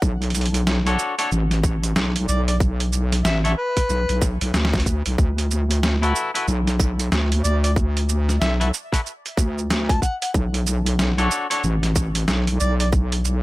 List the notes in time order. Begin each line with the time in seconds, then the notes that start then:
0.02 B1, kick, shaker
0.22 closed hi-hat, shaker
0.24 closed hi-hat
0.30 closed hi-hat
0.35 closed hi-hat, shaker
0.41 closed hi-hat
0.46 closed hi-hat
0.54 closed hi-hat, shaker
0.67 snare, shaker
0.87 D4 F#4 A4 C#5, closed hi-hat, shaker
0.99 shaker
1.19 D4 F#4 A4 C#5, closed hi-hat, shaker
1.31 A1, shaker
1.51 snare, closed hi-hat, shaker
1.64 kick, shaker
1.84 closed hi-hat, shaker
1.96 B1, snare, shaker
2.16 closed hi-hat, shaker
2.28 B1 D5, shaker
2.48 D5, closed hi-hat, shaker
2.60 kick, shaker
2.80 closed hi-hat, shaker
2.93 shaker
3.12 snare, closed hi-hat, shaker
3.25 A1 E5, snare, shaker
3.44 D4 F#4 A4 C#5 E5, closed hi-hat, shaker
3.58 B4
3.77 kick, closed hi-hat, shaker
3.89 B1, shaker
4.09 B1, closed hi-hat, shaker
4.22 kick, shaker
4.41 B1, closed hi-hat, shaker
4.54 D2, snare, shaker
4.65 snare
4.74 kick, snare, shaker
4.80 closed hi-hat
4.86 kick, shaker
5.06 B1, closed hi-hat, shaker
5.18 D2, kick, shaker
5.38 closed hi-hat, shaker
5.51 shaker
5.71 closed hi-hat, shaker
5.83 snare, shaker
6.02 E4 F#4 A4 B4, closed hi-hat, shaker
6.16 shaker
6.34 E4 F#4 A4 B4, closed hi-hat, shaker
6.48 B1, shaker
6.67 snare, closed hi-hat, shaker
6.80 kick, shaker
6.99 closed hi-hat, shaker
7.12 D2, snare, shaker
7.32 closed hi-hat, shaker
7.44 D2 D5, shaker
7.64 D5, closed hi-hat, shaker
7.76 kick, shaker
7.97 closed hi-hat, shaker
8.09 shaker
8.29 snare, shaker
8.41 B1 E5, snare, shaker
8.60 E4 F#4 A4 B4 E5, closed hi-hat, shaker
8.74 shaker
8.92 E4 F#4 A4 B4, kick, closed hi-hat, shaker
9.06 shaker
9.26 closed hi-hat, shaker
9.37 D2, kick, shaker
9.58 shaker
9.70 snare, closed hi-hat, shaker
9.89 A5, kick, closed hi-hat, shaker
10.02 F#5, kick, shaker
10.22 F#5, closed hi-hat, shaker
10.34 B1, kick, shaker
10.54 closed hi-hat, shaker
10.67 shaker
10.86 closed hi-hat, shaker
10.99 snare, shaker
11.18 D4 F#4 A4 C#5, closed hi-hat, shaker
11.31 shaker
11.50 D4 F#4 A4 C#5, closed hi-hat, shaker
11.64 A1, shaker
11.83 snare, closed hi-hat, shaker
11.96 kick, shaker
12.15 closed hi-hat, shaker
12.28 B1, snare, shaker
12.47 closed hi-hat, shaker
12.60 B1 D5, shaker
12.80 D5, closed hi-hat, shaker
12.92 kick, shaker
13.12 closed hi-hat, shaker
13.25 shaker